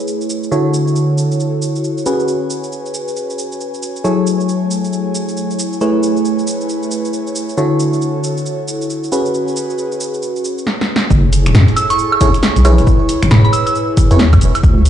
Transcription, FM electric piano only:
Already playing: A3 E4 G#4 B4 C#5
0.52 D3 E4 F#4 A4 C#5
2.06 C#4 F#4 G#4 B4
4.04 F#3 E4 G#4 A4 C#5
5.81 A3 E4 G#4 B4 C#5
7.58 D3 E4 F#4 A4 C#5
9.12 C#4 F#4 G#4 B4
12.21 E4 G#4 A4 C#5
12.65 E4 G#4 B4 C#5
14.11 E4 G#4 B4 C#5

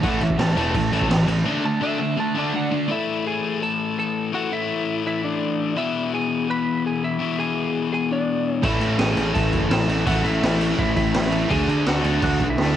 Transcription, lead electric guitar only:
0.04 F#5
0.23 E5
0.40 A5
0.58 A5
1.65 A5
1.83 E5
2.20 A5
2.38 D4 D5 A5
2.56 F#5
2.91 E4 E5
3.27 G#4 G#5
3.63 A4 A5
3.99 A4 A5
4.34 F#4 F#5
4.52 E4 E5
5.07 E4 E5
5.24 D4 D5
5.77 E4 E5
6.14 G#4 G#5
6.50 B4 B5
6.86 G#4 G#5
7.04 E4 E5
7.39 G#4 G#5
7.93 G#4 G#5
8.11 D4 D5
8.51 C#5
8.64 E4 E5
8.99 G#4 G#5
9.34 A4 A5
9.70 A4 A5
10.06 F#4 F#5
10.24 E4 E5
10.79 E4 E5
10.96 E4 E5
11.51 G#4 G#5
11.87 F#4 F#5
12.23 F#4 F#5
12.50 E4 E5

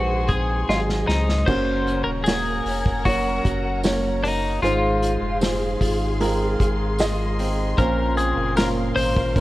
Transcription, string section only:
Already playing: G#4 G#5 C6
1.47 A#4 F#5 A#5
4.64 G#4 F5 C6
7.79 A#4 F5

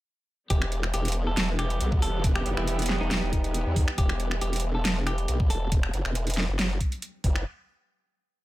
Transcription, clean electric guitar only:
0.50 G4
0.94 G4
1.27 A4
1.59 G4
2.02 A4
2.35 G4
2.57 E4
3.01 D#4
3.98 G4
4.42 G4
4.75 A4
5.07 G4
5.50 A4

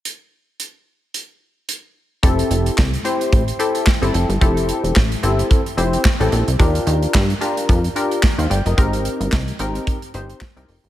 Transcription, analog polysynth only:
2.23 C4 E4 G4 A4
3.05 C4 E4 G4 C5
3.59 C4 E4 G4 A4
4.02 C4 E4 G4 A4
4.41 C4 E4 G4 A4
5.23 C4 E4 G4 A4
5.77 C4 E4 G4 C5
6.20 C4 E4 G4 A4
6.59 D4 F4 G4 A#4
7.41 D4 F4 G4 A#4
7.95 D4 F4 G4 A#4
8.39 C5 F5
8.51 D5 G5
8.66 A#4 D#5
8.77 C4 D#4 G4 A#4
9.59 C4 D#4 G4 A#4
10.14 C4 D#4 G4 C5
10.56 C4 D#4 G4 A#4

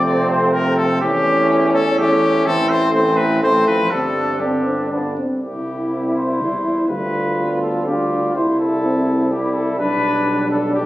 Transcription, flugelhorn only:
Already playing: C4
1.04 C#4
2.00 C#4
2.47 C4
2.95 C4
3.43 C4
3.92 D4
4.42 D4
4.93 D4
5.42 E4
6.90 F4
7.87 F4
8.36 E4
9.33 E4
9.79 D4
10.76 D4

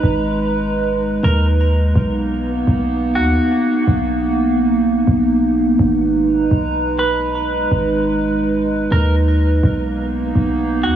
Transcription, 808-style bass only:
0.03 G#1
1.23 D#2
1.95 B1
2.67 B1
3.15 D#2
3.87 B1
5.07 B1
5.79 G#1
6.51 B1
7.71 G#1
8.91 D#2
9.63 B1
10.35 B1
10.83 D#2

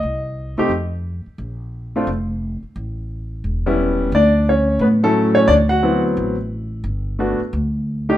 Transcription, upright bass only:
0.03 C2
0.57 C3
0.69 F2
1.26 muted upright bass stroke
1.38 A#1
2.07 F1
2.63 muted upright bass stroke
2.76 A1
3.44 E1
4.12 D2
4.79 A2
5.48 D2
6.17 A1
6.84 G1
7.40 muted upright bass stroke
7.53 D2

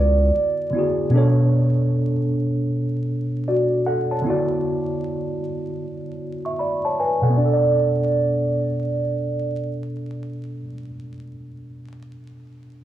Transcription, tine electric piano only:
Already playing: E4 F#4
0.71 D3 B3
0.75 E4 F#4 G#4
1.10 B2 B3
1.14 D4 A4 C#5
3.48 F#4 D5
3.87 A4 F#5
4.11 C#5 A5
4.22 D3 B3
4.26 E4 F#4
4.30 D5
6.45 E5 C#6
6.59 D5 B5
6.85 C#5 A5
6.99 B4 G#5
7.21 B2 A4 F#5
7.29 B3
7.37 D4
7.45 A4
7.53 D5

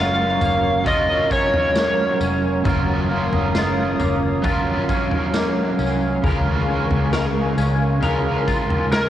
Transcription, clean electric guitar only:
Already playing: F#3 A#3 F4
0.42 A#3
0.86 F4
1.31 C#4
1.76 A#3
2.21 C#4
2.65 F#3 F4
3.10 A#3
3.55 F4
4.00 A#3
4.44 F4
4.89 C#4
5.34 A#3
5.79 C#4
6.24 C#3 A#4
6.68 C#4
7.13 A#4
7.58 C#4
8.03 A#4
8.47 F4
8.92 C#4

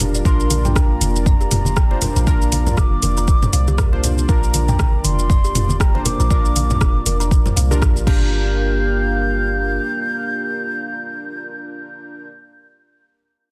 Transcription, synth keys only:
Already playing: D4 F4 A#4
0.25 D4 F4 A#4
1.91 D4 F4 C5
2.27 D4 F4 A#4
3.93 D4 F4 C5
4.29 D4 F4 A#4
5.95 D4 F4 C5
6.31 D4 F4 A#4
7.71 D4 F4 A#4
8.07 D4 F4 A#4

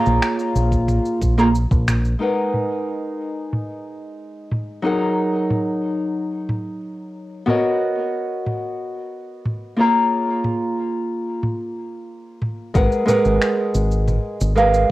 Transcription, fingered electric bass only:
0.07 A#1
0.56 A#1
1.21 A#1
1.71 A#1
12.75 G#1
13.25 G#1
13.74 G#1
14.41 G#1

